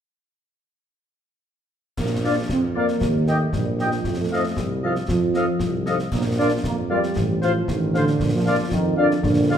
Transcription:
1.97 A#1 A#3, concert bass drum, snare, crash
2.25 D4 F4 A#4 D5 F5
2.49 F2 C4, concert bass drum, snare
2.74 A#3 F4 A#4 D5 F5
2.88 snare
3.01 D#2, concert bass drum, snare
3.26 A3 D#4 G4 A#4 D#5 G5, snare
3.52 A#1 G3, concert bass drum, snare
3.78 F3 D#4 G4 A#4 D#5 G5, snare
3.91 snare
4.04 F2, concert bass drum, snare
4.17 A3
4.32 D#4 A4 C5 D#5 F5
4.55 C2 G3, concert bass drum, snare
4.82 F3 D#4 A4 C5 D#5 F5
4.96 snare
5.08 F2 F3, concert bass drum, snare
5.34 D#4 A4 C5 D#5 F5, snare
5.60 C2, concert bass drum, snare
5.86 D#4 A4 C5 D#5 F5, snare
5.99 snare
6.12 A#1 A#3, concert bass drum, snare, crash
6.38 D4 F4 A#4 D5 F5
6.64 F2 A#3, concert bass drum, snare
6.90 G3 F4 A#4 D5 F5
7.03 snare
7.16 A1, concert bass drum, snare
7.41 F3 F4 C5 F5, snare
7.68 A1 D#3, concert bass drum, snare
7.94 D3 F4 C5 F5, snare
8.07 snare
8.20 A#1, concert bass drum, snare
8.35 F3
8.46 F4 A#4 D5 F5
8.71 F2 D#3, concert bass drum, snare
8.97 D3 F4 A#4 D5 F5
9.11 snare
9.21 A#1 D3, concert bass drum, snare
9.50 F4 A#4 D5 F5

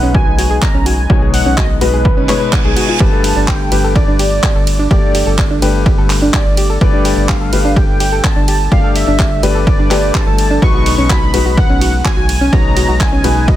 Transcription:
Already playing: B1 B2 G#3 D#4 B4 F#5
0.03 C#4
0.14 F#4 G#5, kick
0.27 B1
0.38 F#4, open hi-hat
0.50 G#4
0.62 A#5, kick, clap
0.74 B1 C#4
0.86 F#4 G#5, open hi-hat
1.10 B1 B2 G#3 D#4 F#4 C#5, kick
1.22 G#4
1.33 F#5, open hi-hat
1.46 B1 C#4
1.57 F#4 D#5, kick, clap
1.81 B1 B2 G#3 D#4 F#4 B4, open hi-hat
1.93 G#4
2.05 kick, reverse cymbal
2.17 F#1 C#4
2.29 B2 G#3 D#4 B4 C#5, clap, open hi-hat
2.53 F#5 G#5, kick, clap
2.65 B1 B2 G#3 D#4 G#4
2.77 F#4, open hi-hat
2.89 F4
3.00 G1 G2 A3 G4 B4 A5, kick, ride
3.13 A4
3.24 open hi-hat, ride
3.36 G1 D4
3.48 G4 G5, kick, clap, ride
3.72 G1 G2 A3 G4 B4, open hi-hat, ride
3.84 A4
3.95 D5, kick, ride
4.08 G1 D4
4.19 G4, open hi-hat, ride
4.43 G4, kick, clap, ride
4.55 G1 A4
4.67 open hi-hat, ride
4.79 D4
4.91 G1 G2 A3 G4 D5, kick, ride
5.14 G4, open hi-hat, ride
5.27 G1 A4
5.38 kick, clap, ride
5.51 D4
5.62 G1 G2 A3 G4 B4, open hi-hat, ride
5.86 G4, kick, ride
5.98 G1 A4
6.10 clap, open hi-hat, ride
6.22 D4
6.34 G4 D5, kick, clap, ride
6.46 G1
6.57 G4, open hi-hat, ride
6.70 A4
6.81 G1 G2 A3 G4 B4 D5, kick, ride
6.93 D4
7.05 G4, open hi-hat, ride
7.17 G1
7.29 G4 F5, kick, clap, ride
7.41 A4
7.53 G1 G2 A3 G4 B4, open hi-hat, ride
7.65 D4
7.76 G4 G5, kick, ride
7.89 G1
8.00 G4, open hi-hat, ride
8.12 A4
8.24 A5, kick, clap, ride
8.36 G1 D4
8.48 G4, open hi-hat, ride
8.72 G1 G2 A3 G4 D5 F5, kick, ride
8.84 A4
8.96 E5, open hi-hat, ride
9.08 G1 D4
9.19 G4, kick, clap, ride
9.43 G1 G2 A3 G4 B4 D5, open hi-hat, ride
9.55 A4
9.67 D5, kick, ride
9.79 G1 D4
9.91 G2 A3 G4 B4, clap, open hi-hat, ride
10.14 G4 A5, kick, clap
10.27 G1 G2 A3 G4 A4
10.38 open hi-hat, ride
10.51 D4
10.62 B1 B2 G#3 D#4 F#4 B4 C#6, kick, ride
10.74 F#4
10.86 open hi-hat, ride
10.98 B1 C#4
11.10 F#4 B5, kick, clap, ride
11.33 B1 B2 G#3 D#4 F#4 B4, open hi-hat, ride
11.46 F#4
11.57 F#5, kick, ride
11.69 B1 C#4
11.81 F#4, open hi-hat, ride
12.05 F#4 G#5, kick, clap, ride
12.17 B1 F#4
12.29 open hi-hat, ride
12.41 C#4
12.53 B1 B2 G#3 D#4 F#4 C#5 A#5, kick, ride
12.76 F#4, open hi-hat, ride
12.88 B1 F#4
13.00 G#5, kick, clap, ride
13.12 C#4
13.24 B1 B2 G#3 D#4 F#4 B4, open hi-hat, ride
13.48 F#4 D#5, kick, ride

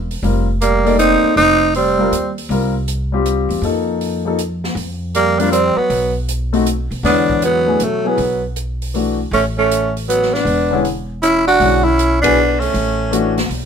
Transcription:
Already playing: E1
0.11 open hi-hat
0.23 F1 G3 C4 F4 A#4, open hi-hat
0.61 G3 A#3, closed hi-hat
0.85 A#3 D#4 A4 D5, open hi-hat
0.99 C4 D#4, closed hi-hat
1.23 muted upright bass stroke
1.36 F1 C4 D#4, open hi-hat
1.74 G3 C4, open hi-hat
1.98 G3 C4 F4 A#4
2.11 D#2, closed hi-hat
2.38 open hi-hat
2.49 C2 G3 C4 F4 A#4, open hi-hat
2.88 closed hi-hat
3.12 G3 C4 F4 G4
3.26 closed hi-hat
3.49 E2, open hi-hat
3.62 F2 F3 A#3 D#4 A4, open hi-hat
4.01 open hi-hat
4.25 F3 A#3 D#4 A4
4.39 closed hi-hat
4.64 snare
4.75 F2, open hi-hat
5.15 G3 A#3, closed hi-hat
5.39 G3 A#3 C4 D4 F4 A#4, open hi-hat
5.52 G3 C4, closed hi-hat
5.76 F#3 B3, muted upright bass stroke
5.90 B1, open hi-hat
6.29 closed hi-hat
6.53 A3 C4 D#4 F#4, open hi-hat
6.66 closed hi-hat
6.91 B2, open hi-hat
7.03 E2 D3 G#3 B3 D4 E4 C#5, snare, open hi-hat
7.30 kick
7.42 F#3 B3, closed hi-hat
7.66 E3 A3 D4 G#4
7.80 B2 F#3 A3, closed hi-hat
8.04 F#3 B3 E4 G#4
8.18 B1, open hi-hat
8.56 closed hi-hat
8.82 open hi-hat
8.94 E3 A3 D4 F#4, open hi-hat
9.31 A1 A3 C#4, open hi-hat
9.58 A3 C#4
9.71 closed hi-hat
9.97 open hi-hat
10.08 F#3 B3, closed hi-hat
10.22 snare
10.34 B3 D4, snare
10.45 E1, open hi-hat
10.71 D3 G#3 C#4 E4
10.85 open hi-hat
11.22 C#4 E4, closed hi-hat
11.47 D4 F#4, open hi-hat
11.60 B1 D3 G#3 C#4 E4, open hi-hat
11.85 C#4 E4
11.99 closed hi-hat
12.22 F#3 B3 D4 E4 G#4, kick, ride
12.60 A3 C#4, open hi-hat
12.74 A1, open hi-hat
13.11 E3 A3 D4 F#4, closed hi-hat
13.38 snare, open hi-hat
13.49 B1, open hi-hat

